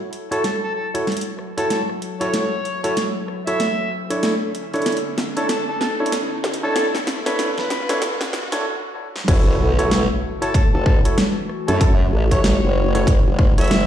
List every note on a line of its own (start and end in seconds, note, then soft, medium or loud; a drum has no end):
0.00 4.19 F#3 medium
0.00 1.68 E4 medium
0.00 6.72 A4 medium
0.00 riser medium
0.13 closed hi-hat soft
0.31 0.44 E4 medium
0.31 0.44 F#4 medium
0.31 0.44 A4 medium
0.31 0.40 A4 medium
0.31 0.44 C#5 loud
0.31 closed hi-hat medium
0.44 0.56 A4 medium
0.44 snare soft
0.44 closed hi-hat medium
0.63 0.71 A4 medium
0.76 0.88 A4 medium
0.94 1.07 E4 medium
0.94 1.07 F#4 medium
0.94 1.07 A4 medium
0.94 1.07 C#5 loud
0.94 closed hi-hat medium
1.07 snare medium
1.07 closed hi-hat soft
1.12 closed hi-hat soft
1.17 closed hi-hat soft
1.21 closed hi-hat medium
1.39 cross-stick soft
1.58 1.81 E4 medium
1.58 1.81 F#4 medium
1.58 1.81 A4 medium
1.58 1.66 A4 medium
1.58 1.81 C#5 loud
1.58 closed hi-hat medium
1.70 4.21 F#4 medium
1.70 1.83 A4 medium
1.70 snare medium
1.70 closed hi-hat medium
1.89 cross-stick soft
2.02 closed hi-hat soft
2.21 2.44 E4 medium
2.21 2.44 F#4 medium
2.21 2.27 A4 medium
2.21 2.44 A4 medium
2.21 2.80 C#5 loud
2.21 2.44 C#5 loud
2.21 closed hi-hat medium
2.34 snare medium
2.34 closed hi-hat medium
2.65 closed hi-hat soft
2.84 2.96 E4 medium
2.84 2.96 F#4 medium
2.84 2.93 A4 medium
2.84 2.96 A4 medium
2.84 3.03 C#5 medium
2.84 2.96 C#5 loud
2.84 closed hi-hat medium
2.97 snare medium
2.97 closed hi-hat medium
3.28 cross-stick soft
3.47 3.60 E4 medium
3.47 3.60 F#4 medium
3.47 3.60 A4 medium
3.47 3.60 C#5 loud
3.47 3.91 E5 loud
3.47 closed hi-hat medium
3.60 snare medium
3.60 closed hi-hat medium
4.10 4.34 D4 medium
4.10 4.34 E4 medium
4.10 4.34 A4 medium
4.10 4.34 C#5 loud
4.10 closed hi-hat medium
4.23 8.61 D3 medium
4.23 8.61 B3 medium
4.23 8.61 C#4 medium
4.23 8.61 E4 medium
4.23 snare medium
4.23 closed hi-hat medium
4.55 closed hi-hat soft
4.74 4.97 D4 medium
4.74 4.97 E4 medium
4.74 4.97 A4 medium
4.74 4.97 C#5 loud
4.74 closed hi-hat soft
4.76 closed hi-hat soft
4.82 closed hi-hat soft
4.86 snare medium
4.86 closed hi-hat medium
4.92 closed hi-hat soft
4.97 closed hi-hat soft
5.18 snare medium
5.18 closed hi-hat soft
5.37 5.49 D4 medium
5.37 5.49 E4 medium
5.37 5.45 A4 medium
5.37 5.49 A4 medium
5.37 5.49 C#5 loud
5.37 closed hi-hat medium
5.49 5.62 A4 medium
5.49 snare medium
5.49 closed hi-hat medium
5.68 5.77 A4 medium
5.81 5.93 A4 medium
5.81 snare medium
6.00 6.12 D4 medium
6.00 6.12 E4 medium
6.00 6.12 A4 medium
6.00 6.12 C#5 loud
6.06 closed hi-hat medium
6.12 snare medium
6.12 closed hi-hat medium
6.44 snare medium
6.54 closed hi-hat medium
6.63 6.87 D4 medium
6.63 6.87 E4 medium
6.63 6.87 A4 medium
6.63 6.71 A4 medium
6.63 6.87 C#5 loud
6.76 6.88 A4 medium
6.76 8.64 B4 medium
6.76 snare loud
6.76 closed hi-hat medium
6.95 snare medium
7.07 snare loud
7.07 closed hi-hat soft
7.26 7.50 D4 loud
7.26 7.49 E4 medium
7.26 7.50 A4 medium
7.26 7.34 B4 medium
7.26 7.49 C#5 loud
7.26 snare medium
7.26 closed hi-hat medium
7.38 7.51 B4 medium
7.38 snare medium
7.38 closed hi-hat medium
7.57 8.02 B4 loud
7.57 snare medium
7.70 snare loud
7.70 closed hi-hat soft
7.89 8.02 D4 loud
7.89 8.02 E4 medium
7.89 8.02 A4 medium
7.89 8.02 C#5 loud
7.89 snare medium
7.89 closed hi-hat medium
8.02 snare loud
8.02 closed hi-hat medium
8.21 snare medium
8.33 snare loud
8.52 8.65 D4 medium
8.52 8.65 E4 medium
8.52 8.65 A4 medium
8.52 8.65 C#5 loud
8.52 snare loud
8.52 closed hi-hat medium
9.16 snare medium
9.28 9.58 F#1 medium
9.28 13.87 E3 medium
9.28 13.87 A3 medium
9.28 9.71 E4 loud
9.28 13.87 F#4 medium
9.28 9.71 F#4 medium
9.28 9.71 A4 medium
9.28 9.71 C#5 loud
9.28 kick loud
9.28 closed hi-hat medium
9.28 crash loud
9.28 impact medium
9.47 cross-stick soft
9.60 10.08 B1 loud
9.79 10.02 E4 medium
9.79 10.02 F#4 medium
9.79 10.02 A4 medium
9.79 10.02 C#5 loud
9.79 closed hi-hat medium
9.91 snare loud
9.91 closed hi-hat medium
10.42 10.54 E4 medium
10.42 10.54 F#4 medium
10.42 10.54 A4 medium
10.42 10.50 A4 medium
10.42 10.54 C#5 loud
10.42 closed hi-hat medium
10.54 10.67 A4 medium
10.54 kick loud
10.54 closed hi-hat medium
10.73 11.02 F#1 loud
10.73 10.82 A4 medium
10.86 10.98 A4 medium
10.86 kick loud
11.05 11.17 E4 medium
11.05 11.17 F#4 medium
11.05 11.17 A4 medium
11.05 11.18 C#5 loud
11.05 closed hi-hat medium
11.18 snare loud
11.18 closed hi-hat medium
11.49 cross-stick soft
11.68 12.11 F#2 medium
11.68 11.92 E4 medium
11.68 11.91 F#4 medium
11.68 11.92 A4 medium
11.68 11.76 A4 medium
11.68 11.92 C#5 loud
11.68 closed hi-hat medium
11.81 11.93 A4 medium
11.81 kick loud
11.81 closed hi-hat medium
12.00 cross-stick soft
12.13 12.60 A1 loud
12.31 12.55 E4 medium
12.31 12.55 F#4 medium
12.31 12.55 A4 medium
12.31 12.55 C#5 loud
12.31 12.91 C#5 loud
12.31 kick medium
12.31 closed hi-hat medium
12.44 snare loud
12.44 closed hi-hat medium
12.64 13.06 F#1 loud
12.95 13.07 E4 medium
12.95 13.07 F#4 medium
12.95 13.07 A4 medium
12.95 13.07 C#5 loud
12.95 13.14 C#5 medium
12.95 closed hi-hat medium
13.07 13.23 F#1 loud
13.07 kick loud
13.07 closed hi-hat medium
13.26 13.55 F#1 loud
13.39 kick loud
13.39 cross-stick soft
13.58 13.87 F#1 loud
13.58 13.70 E4 medium
13.58 13.70 F#4 medium
13.58 13.70 A4 medium
13.58 13.70 C#5 loud
13.58 13.87 E5 loud
13.58 closed hi-hat medium
13.61 closed hi-hat soft
13.64 closed hi-hat soft
13.68 snare loud
13.68 closed hi-hat soft
13.71 closed hi-hat medium
13.75 closed hi-hat soft
13.80 closed hi-hat soft